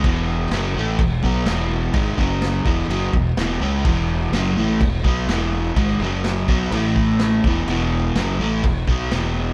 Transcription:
<<
  \new Staff \with { instrumentName = "Overdriven electric guitar" } { \clef bass \time 4/4 \key e \major \tempo 4 = 126 <e, b, e>4 <fis, cis fis>8 <a, e a>8 <e, b,>8 <b, fis b>8 <e, b, e>4 | <gis, dis gis>8 <fis, cis fis>4 <e, b, e>8 <fis, cis fis>8 <e, b,>8 <e, b, e>8 <cis gis cis'>8 | <e, b, e>4 <fis, cis fis>8 <a, e a>8 <e, b,>8 <b, fis b>8 <e, b, e>4 | <gis, dis gis>8 <fis, cis fis>4 <b, fis b>8 <a, e a>4. <e, b, e>8 |
<e, b, e>4 <fis, cis fis>8 <a, e a>8 <e, b,>8 <b, fis b>8 <e, b, e>4 | }
  \new Staff \with { instrumentName = "Fingered electric bass" } { \clef bass \time 4/4 \key e \major e,,4 fis,,8 a,,8 e,,8 b,,8 e,,4 | gis,,8 fis,,4 e,,8 fis,,8 e,,8 e,,8 cis,8 | e,,4 fis,,8 a,,8 e,,8 b,,8 e,,4 | gis,,8 fis,,4 b,,8 a,,4. e,,8 |
e,,4 fis,,8 a,,8 e,,8 b,,8 e,,4 | }
  \new DrumStaff \with { instrumentName = "Drums" } \drummode { \time 4/4 <cymc bd>4 <cymc sn>4 <cymc bd>8 bd8 <cymc sn>4 | <cymc bd>8 bd8 <cymc sn>8 bd8 cymc8 bd8 <cymc sn>4 | <cymc bd>4 <cymc sn>4 <cymc bd>8 bd8 <cymc sn>4 | <cymc bd>4 <cymc sn>8 bd8 cymc8 bd8 <cymc sn>8 bd8 |
cymc4 <cymc sn>4 <cymc bd>8 bd8 <cymc sn>4 | }
>>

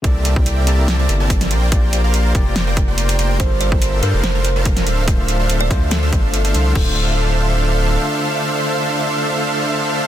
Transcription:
<<
  \new Staff \with { instrumentName = "Kalimba" } { \time 4/4 \key d \minor \tempo 4 = 143 r1 | r1 | c''8 d''8. r16 bes'8 c''8. r4 r16 | r4 r16 d''8. a'8. r4 r16 |
a'1~ | a'1 | }
  \new Staff \with { instrumentName = "Supersaw synth" } { \time 4/4 \key d \minor <c' g' bes' d'' e'' a''>8. c'8. <c' g' bes' d'' e'' a''>8. <c' g' bes' d'' e'' a''>16 r16 <c' g' bes' d'' e'' a''>8. <bes bes' c'' d'' g''>8 | r8. <bes bes' c'' d'' f''>8. r8. <bes bes' c'' d'' g''>16 r16 <bes bes' c'' d'' g''>8. <bes bes' c'' d'' g''>8 | g8. <g d' a' bes' c'' e''>8. <g d' a' bes' c'' f''>8. <g d' a' bes' c'' f''>16 r16 <g d' a' bes' c'' f''>8. <d' a' c'' e'' f''>8 | c''8. <d' a' c'' e'' f''>8. <e'' f''>8. <d' a' c'' e'' f''>16 r8. <d' a' c'' e'' f''>8. |
r1 | r1 | }
  \new Staff \with { instrumentName = "Tine electric piano" } { \time 4/4 \key d \minor <c bes e' a' d''>4. <c bes e' a' d''>2 r8 | <bes f' g' d''>4. <bes f' g' d''>2~ <bes f' g' d''>8 | <g f' a' bes' c''>4. <g f' a' bes' c''>2 r8 | <d a f' c''>4. <d a f' c''>2~ <d a f' c''>8 |
<d a f' c''>1~ | <d a f' c''>1 | }
  \new Staff \with { instrumentName = "Sub bass" } { \clef bass \time 4/4 \key d \minor c,2~ c,8 g,,4 bes,,8~ | bes,,4. f,,2~ f,,8 | g,,4. g,16 f,,4.~ f,,16 d,,8~ | d,,4. d,4 g,,4 c,8 |
d,,2. r4 | r1 | }
  \new DrumStaff \with { instrumentName = "Drums" } \drummode { \time 4/4 <hh bd>8 hh16 bd16 hh8 hh8 <hh sn>8 hh8 <hh bd>16 <hh sn>16 hh8 | <hh bd>8 hh8 hh8 <hh bd>8 <hh sn>8 <hh bd>8 hh16 hh16 hh8 | <hh bd>8 hh16 bd16 hh8 hh8 <hh sn>8 hh8 <hh bd>16 <hh sn>16 hh8 | <hh bd>8 hh8 hh8 <hh bd>8 <hh sn>8 <hh bd>8 hh16 hh16 hh8 |
<cymc bd>4 r4 r4 r4 | r4 r4 r4 r4 | }
>>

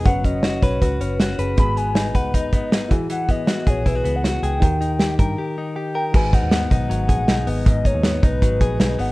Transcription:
<<
  \new Staff \with { instrumentName = "Soft synth lead" } { \time 4/4 \key gis \minor \tempo 4 = 158 fis''8 dis''4 cis''8 b'8 b'8 r4 | b''8 gis''4 fis''8 dis''8 dis''8 r4 | fis''8 dis''4 cis''8 b'8. fis''8. g''8~ | g''2. r8 g''8 |
gis''8 fis''4 fis''2 dis''8 | dis''8 cis''4 b'2 fis''8 | }
  \new Staff \with { instrumentName = "Reed electric piano" } { \time 4/4 \key gis \minor << { r1 | r1 | r1 | r2. g''8 g''8 |
r1 | r1 | } \\ { <cis' fis' b'>2.~ <cis' fis' b'>8 <cis' fis' gis'>8 | <b fis' gis'>2.~ <b fis' gis'>8 <e' fis' gis'>8~ | <e' fis' gis'>1 | <dis' g' ais'>1 |
<fis' gis' b'>1~ | <fis' gis' b'>1 | } >> }
  \new Staff \with { instrumentName = "Clean electric guitar" } { \time 4/4 \key gis \minor fis8 cis'8 fis'8 b'8 fis'8 cis'8 fis'8 b'8 | gis,8 b8 dis'8 b'8 dis'8 b8 dis'8 e8 | e8 b8 fis'8 gis'8 e'16 fis'16 b8 fis'8 gis'8 | dis8 dis'8 g'8 ais'8 g'8 dis'8 g'8 ais'8 |
gis,8 dis'8 b8 dis'8 fis8 gis'8 dis'8 b8 | gis,8 dis'8 b8 dis'8 fis8 gis'8 dis'8 b8 | }
  \new Staff \with { instrumentName = "Picked electric bass" } { \clef bass \time 4/4 \key gis \minor fis,,4. b,,8 cis,8 fis,,4 fis,,8 | gis,,4. cis,8 dis,8 gis,,4 e,,8~ | e,,4. ais,,8 b,,8 cis,4 cis,8 | dis,4. g,8 r2 |
gis,,8. dis,8. b,,8 gis,,8 ais,,8 b,,8 gis,,8 | gis,,8. dis,8. b,,8 gis,,8 ais,,8 b,,8 gis,,8 | }
  \new DrumStaff \with { instrumentName = "Drums" } \drummode { \time 4/4 <hh bd>8 <hh bd>8 <hh sn>8 <hh bd>8 <hh bd>8 hh8 <hh sn>8 hh8 | <hh bd>8 hh8 <hh sn>8 <hh bd>8 <hh bd>8 <hh bd>8 <hh sn>8 <hh bd>8 | hh8 <hh bd>8 <hh sn>8 <hh bd>8 <hh bd>8 hh8 <hh sn>8 hh8 | <hh bd>8 hh8 <hh sn>8 <hh bd>8 r4 r4 |
<cymc bd>8 <hh bd>8 <hh sn>8 <hh bd>8 hh8 <hh bd>8 <hh sn>8 hho8 | <hh bd>8 <hh bd>8 <hh sn>8 <hh bd>8 <hh bd>8 <hh bd>8 <hh sn>8 hho8 | }
>>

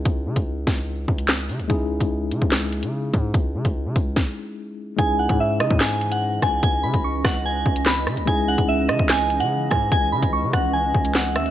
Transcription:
<<
  \new Staff \with { instrumentName = "Synth bell" } { \time 4/4 \key cis \minor \tempo 4 = 146 r1 | r1 | r1 | gis''8 fis''8 e''8 dis''8 gis''8. fis''8. gis''8 |
gis''8 b''8 cis'''8 fis''8 gis''4 b''4 | gis''8 fis''8 e''8 dis''8 gis''8. fis''8. gis''8 | gis''8 b''8 cis'''8 fis''8 gis''4 fis''8 e''8 | }
  \new Staff \with { instrumentName = "Tine electric piano" } { \time 4/4 \key cis \minor <gis cis' dis' e' gis'>1 | <gis cis' dis' e' gis'>1~ | <gis cis' dis' e' gis'>1 | <gis cis' dis' e' gis'>1~ |
<gis cis' dis' e' gis'>1 | <gis cis' dis' e' gis'>1~ | <gis cis' dis' e' gis'>1 | }
  \new Staff \with { instrumentName = "Ambient pad" } { \time 4/4 \key cis \minor r1 | r1 | r1 | <e cis' dis''>1~ |
<e cis' dis''>1~ | <e cis' dis''>1~ | <e cis' dis''>1 | }
  \new Staff \with { instrumentName = "808-style bass" } { \clef bass \time 4/4 \key cis \minor cis,8 cis16 cis,8. cis,4 cis,4 cis16 cis,16 | cis,8. cis,8. cis16 cis,4 cis8. gis,8 | cis,8 cis16 cis,8 cis16 cis,8 r2 | cis,8. gis,8. cis16 gis,4.~ gis,16 cis,8 |
cis,8 cis16 cis,8. cis,4 cis,4 cis16 cis,16 | cis,8. cis,8. cis16 cis,4 cis8. gis,8 | cis,8 cis16 cis,8 cis16 cis,4 cis,4 dis,16 cis,16 | }
  \new DrumStaff \with { instrumentName = "Drums" } \drummode { \time 4/4 <hh bd>8. <hh bd>16 r8 <hh bd sn>8 r8 bd16 hh16 <hc sn>8 hho16 hh16 | <hh bd>8. <hh bd>16 r8 hh16 bd16 <hc hh sn>8 hh16 hh16 r8 <hh bd>8 | <hh bd>8. <hh bd>16 r8 <hh bd>8 <bd sn>4 r4 | <hh bd>8. <hh bd>16 r8 <hh ss>16 bd16 <hc hh sn>8 hh16 hh16 r8 <hh bd ss>8 |
<hh bd>8. <hh bd>16 r8 <hh bd ss sn>8 r8 bd16 hh16 <hc sn>8 <hho ss>16 hh16 | <hh bd>8. <hh bd>16 r8 <hh ss>16 bd16 <hc hh sn>8 hh16 hh16 r8 <hh bd ss>8 | <hh bd>8. <hh bd>16 r8 <hh bd ss>8 r8 bd16 hh16 <hc sn>8 <hh ss>16 hh16 | }
>>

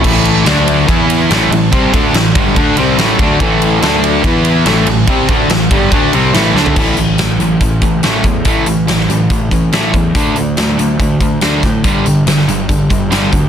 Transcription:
<<
  \new Staff \with { instrumentName = "Distorted electric guitar" } { \clef bass \time 4/4 \key d \major \tempo 4 = 142 <a, e a>4 <d a d'>4 <e b e'>4 <a, e a>8 <a, e>8 | <c g c'>8 <d a d'>8 <a, e>8 <g, d g>8 <d a d'>8 <c g c'>8 <a, e a>8 <d a d'>8 | <a, e a>4 <d a d'>4 <e b e'>4 <a, e a>8 <a, e>8 | <c g c'>8 <d a d'>8 <a, e>8 <g, d g>8 <d a d'>8 <c g c'>8 <a, e a>8 <d a d'>8 |
r1 | r1 | r1 | r1 | }
  \new Staff \with { instrumentName = "Overdriven electric guitar" } { \clef bass \time 4/4 \key d \major <a, e a>4 <d a d'>4 <e b e'>4 <a, e a>8 <a, e>8 | <c g c'>8 <d a d'>8 <a, e>8 <g, d g>8 <d a d'>8 <c g c'>8 <a, e a>8 <d a d'>8 | <a, e a>4 <d a d'>4 <e b e'>4 <a, e a>8 <a, e>8 | <c g c'>8 <d a d'>8 <a, e>8 <g, d g>8 <d a d'>8 <c g c'>8 <a, e a>8 <d a d'>8 |
<a, e a>8 <a, e>8 <a, e>8 <a, e>8 <a, e>8 <a, e>8 <a, e a>8 <a, e>8 | <a, e a>8 <a, e>8 <a, e>8 <a, e>8 <a, e>8 <a, e>8 <a, e a>8 <a, e>8 | <d a d'>8 <d a>8 <d a>8 <d a>8 <d a>8 <d a>8 <d a d'>8 <d a>8 | <g, d g>8 <g, d>8 <g, d>8 <g, d>8 <g, d>8 <g, d>8 <g, d g>8 <g, d>8 | }
  \new Staff \with { instrumentName = "Overdriven electric guitar" } { \clef bass \time 4/4 \key d \major <a, e a>4 <d a d'>4 <e b e'>4 <a, e a>8 <a, e>8 | <c g c'>8 <d a d'>8 <a, e>8 <g, d g>8 <d a d'>8 <c g c'>8 <a, e a>8 <d a d'>8 | <a, e a>4 <d a d'>4 <e b e'>4 <a, e a>8 <a, e>8 | <c g c'>8 <d a d'>8 <a, e>8 <g, d g>8 <d a d'>8 <c g c'>8 <a, e a>8 <d a d'>8 |
<a, e a>8 <a, e>8 <a, e>8 <a, e>8 <a, e>8 <a, e>8 <a, e a>8 <a, e>8 | <a, e a>8 <a, e>8 <a, e>8 <a, e>8 <a, e>8 <a, e>8 <a, e a>8 <a, e>8 | <d a d'>8 <d a>8 <d a>8 <d a>8 <d a>8 <d a>8 <d a d'>8 <d a>8 | <g, d g>8 <g, d>8 <g, d>8 <g, d>8 <g, d>8 <g, d>8 <g, d g>8 <g, d>8 | }
  \new Staff \with { instrumentName = "Picked electric bass" } { \clef bass \time 4/4 \key d \major a,,4 d,4 e,4 a,,8 a,,8 | c,8 d,8 a,,8 g,,8 d,8 c,8 a,,8 d,8 | a,,4 d,4 e,4 a,,8 a,,8 | c,8 d,8 a,,8 g,,8 d,8 c,8 a,,8 d,8 |
a,,8 a,,8 a,,8 a,,8 a,,8 a,,8 a,,8 e,8 | a,,8 a,,8 a,,8 a,,8 a,,8 a,,8 a,,8 e,8 | d,8 d,8 d,8 d,8 d,8 d,8 d,8 a,8 | g,,8 g,,8 g,,8 g,,8 g,,8 g,,8 g,,8 d,8 | }
  \new DrumStaff \with { instrumentName = "Drums" } \drummode { \time 4/4 <cymc bd cymr>8 cymr8 <cymr sn>8 cymr8 <bd cymr>8 cymr8 <cymr sn>8 cymr8 | <bd cymr>8 <bd cymr>8 <cymr sn>8 <bd cymr>8 <bd cymr>8 cymr8 <cymr sn>8 <bd cymr>8 | <bd cymr>8 cymr8 <cymr sn>8 cymr8 <bd cymr>8 cymr8 <cymr sn>8 cymr8 | <bd cymr>8 <bd cymr>8 <cymr sn>8 <bd cymr>8 <bd cymr>8 cymr8 <cymr sn>8 sn16 tomfh16 |
<cymc bd>8 hh8 <hh sn>8 hh8 <hh bd>8 <hh bd>8 <hh sn>8 <hh bd>8 | <hh bd>8 hh8 <hh sn>16 sn16 hh8 <hh bd>8 <hh bd>8 <hh sn>8 <hh bd>8 | <hh bd>8 hh8 <hh sn>8 hh8 <hh bd>8 <hh bd>8 <hh sn>8 <hh bd sn>8 | <hh bd>8 hh8 <hh sn>16 sn16 hh8 <hh bd>8 <hh bd>8 <hh sn>8 <hh bd>8 | }
>>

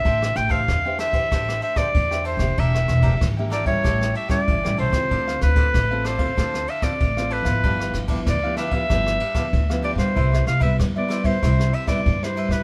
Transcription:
<<
  \new Staff \with { instrumentName = "Clarinet" } { \time 4/4 \key c \major \tempo 4 = 95 e''8 g''16 f''8. e''4 e''16 d''8. c''8 | e''4 r8 d''16 des''8. e''16 d''8. c''8~ | c''8 b'4 c''4 e''16 d''8. b'8~ | b'8 r8 d''8 e''2 d''16 c''16~ |
c''8 f''16 e''8 d''8 c''8. e''16 d''8 c''8 b'16 | }
  \new Staff \with { instrumentName = "Cavaquinho" } { \time 4/4 \key c \major <a' c'' e'' g''>16 <c'' e'' g''>8 <a' c'' e'' g''>16 r16 <c'' e'' g''>16 <a' c'' e'' g''>16 <c'' e'' g''>16 <a' c'' e'' g''>8 <a' c'' e'' g''>16 <a' c'' e'' g''>16 r16 <c'' e'' g''>16 <a' c'' e'' g''>16 <c'' e'' g''>16 | <d' bes' e'' g''>16 <bes' e'' g''>8 <d' bes' e'' g''>16 r16 <bes' e'' g''>16 <d' bes' e'' g''>16 <bes' e'' g''>16 <g' a' cis'' g''>8 <g' a' cis'' g''>16 <g' a' cis'' g''>16 r16 <a' cis'' g''>16 <g' a' cis'' g''>16 <a' cis'' g''>16 | <d' a' c'' f''>16 <a' c'' f''>8 <d' a' c'' f''>16 r16 <a' c'' f''>16 <d' a' c'' f''>16 <a' c'' f''>16 <d' a' c'' f''>8 <d' a' c'' f''>16 <d' a' c'' f''>16 r16 <a' c'' f''>16 <d' a' c'' f''>16 <a' c'' f''>16 | <d' g' b' f''>16 <g' f''>8 <d' g' b' f''>16 r16 <g' b' f''>16 <d' g' b' f''>16 <g' b' f''>16 <d' g' b'>8 <d' g' b' f''>16 <d' g' b' f''>16 r16 <g' b' f''>16 <d' g' b' f''>16 <g' b' f''>16 |
<e' b' c'' e''>16 <b' c'' e''>8 <e' b' c'' e''>16 r16 <b' c'' e''>16 <e' b' c'' e''>16 <b' c'' e''>16 <e' c'' e''>8 <e' b' c'' e''>16 <e' b' c'' e''>16 r16 <b' c'' e''>16 <e' b' c'' e''>16 <b' c'' e''>16 | }
  \new Staff \with { instrumentName = "Nylon-string guitar" } { \time 4/4 \key c \major << { <d' g' c''>8. <d' g' c''>8 <d' g' c''>8 <d' g' c''>16 <d' g' c''>8. <d' g' c''>8 <d' g' c''>8 <bes d' g'>16~ | <bes d' g'>8. <bes d' g'>8 <bes d' g'>8 <g des' e'>4 <g cis' e'>8 <g cis' e'>8 <c' f' a'>16~ | <c' f' a'>8. <c' f' a'>8 <c' f' a'>8 <c' f' a'>16 <c' f' a'>8 r16 <c' f' a'>8 <c' f' a'>8 <f b e'>16~ | <f b e'>8. <f b e'>8 <f b e'>8 <f b e'>16 <f b e'>8 r16 <f b e'>8 <f b e'>8 <g e'>16~ |
<g e'>8. <g b e'>8 <g b e'>8 <g b e'>16 <g e'>8. <g b e'>8 <g e'>8. | } \\ { a4 e4 a4 e4 | e4 e4 a,4 e4 | d4 a,4 d4 a,4 | g,4 d4 g,4 d4 |
c4 g,4 c4 g,4 | } >> }
  \new Staff \with { instrumentName = "Upright bass" } { \clef bass \time 4/4 \key c \major a,,8 a,,8 e,4 a,,8 r8 e,8. f,,16 | e,,8 e,,8 aes,,4 a,,8 r8 g,,16 a,,16 b,,16 cis,16 | d,8 d,8 a,,4 d,8 r8 a,,8. aes,,16 | g,,8 g,,8 d,4 g,,8 r8 d,8. g,16 |
c,8 c,8 g,4 c,8 r8 g,8. g,16 | }
  \new DrumStaff \with { instrumentName = "Drums" } \drummode { \time 4/4 <bd cymr>16 ss16 <cymr ss>16 <bd cymr>16 <bd cymr ss>8 <cymr ss>16 <bd cymr>16 <bd cymr ss>16 ss16 cymr16 <bd cymr ss>16 <bd cymr>16 ss16 cymr16 <bd cymr ss>16 | <bd cymr>16 ss16 <cymr ss>16 <bd cymr>16 <bd cymr ss>8 <cymr ss>16 <bd cymr>16 <bd cymr ss>16 ss16 cymr16 <bd cymr ss>16 <bd cymr>16 ss16 cymr16 <bd cymr ss>16 | <bd cymr>16 ss16 <cymr ss>16 <bd cymr>16 <bd cymr ss>8 <cymr ss>16 <bd cymr>16 <bd cymr ss>16 ss16 cymr16 <bd cymr ss>16 <bd cymr>16 ss16 cymr16 <bd cymr ss>16 | <bd cymr>16 ss16 <cymr ss>16 <bd cymr>16 <bd cymr ss>8 <cymr ss>16 <bd cymr>16 <bd cymr ss>16 ss16 cymr16 <bd cymr ss>16 <bd cymr>16 ss16 cymr16 <bd cymr ss>16 |
<bd cymr>16 ss16 <cymr ss>16 <bd cymr>16 <bd cymr ss>8 <cymr ss>16 <bd cymr>16 <bd cymr ss>16 ss16 cymr16 <bd cymr ss>16 <bd cymr>16 ss16 cymr16 <bd cymr ss>16 | }
>>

